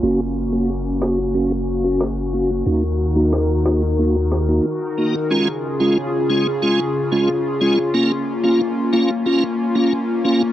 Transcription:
<<
  \new Staff \with { instrumentName = "Analog synth pad" } { \time 4/4 \key des \major \tempo 4 = 91 << { <bes des' ges'>1 | <ees ees' bes'>1 | <des des' aes'>1 | bes1 | } \\ { r1 | r1 | f'1~ | f'1 | } >> }
  \new Staff \with { instrumentName = "Tonewheel organ" } { \time 4/4 \key des \major <bes des' ges'>16 r8 <bes des' ges'>16 r8 <bes des' ges'>16 r16 <bes des' ges'>16 r8 <bes des' ges'>16 r8 <bes des' ges'>16 r16 | <bes ees' ges'>16 r8 <bes ees' ges'>16 r8 <bes ees' ges'>16 r16 <bes ees' ges'>16 r8 <bes ees' ges'>16 r8 <bes ees' ges'>16 r16 | <aes des' f'>16 r8 <aes des' f'>16 r8 <aes des' f'>16 r16 <aes des' f'>16 r8 <aes des' f'>16 r8 <aes des' f'>16 r16 | <bes des' f'>16 r8 <bes des' f'>16 r8 <bes des' f'>16 r16 <bes des' f'>16 r8 <bes des' f'>16 r8 <bes des' f'>16 r16 | }
  \new Staff \with { instrumentName = "Sub bass" } { \clef bass \time 4/4 \key des \major ges,,1 | ees,2. r4 | r1 | r1 | }
  \new DrumStaff \with { instrumentName = "Drums" } \drummode { \time 4/4 r4 r8 sn8 r4 sn4 | r4 sn8 sn8 r8 sn8 r4 | r4 r4 r4 r4 | r4 r4 r4 r4 | }
>>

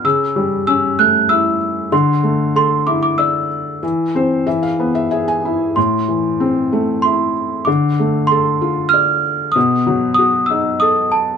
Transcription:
<<
  \new Staff \with { instrumentName = "Celesta" } { \time 3/4 \key d \dorian \tempo 4 = 95 e'''4 e'''8 fis'''8 e'''4 | c'''4 c'''8 d'''16 d'''16 e'''4~ | e'''2~ e'''8 r8 | c'''2 c'''4 |
d'''4 c'''4 f'''4 | dis'''4 dis'''8 e'''8 dis'''8 a''8 | }
  \new Staff \with { instrumentName = "Felt piano" } { \time 3/4 \key d \dorian << { r2. | r2. | r8 c''8 e''16 f''8 e''16 e''16 gis''8. | r2. |
r2. | r2. | } \\ { cis8 g8 cis'8 a8 e'4 | d8 a8 a'8 e'8 d''4 | e8 c'8 e8 b8 gis'8 e'8 | a,8 e8 c'8 a8 e'4 |
d8 a8 a'8 f'8 d''4 | b,8 fis8 fis'8 dis'8 a'4 | } >> }
>>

